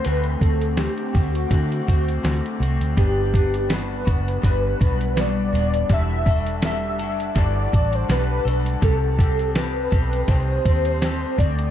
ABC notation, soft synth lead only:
X:1
M:4/4
L:1/16
Q:"Swing 16ths" 1/4=82
K:G
V:1 name="Soft synth lead"
B2 A2 G3 F6 z3 | G4 B4 B4 d4 | e4 e4 d3 c B3 z | A4 B4 c6 d2 |]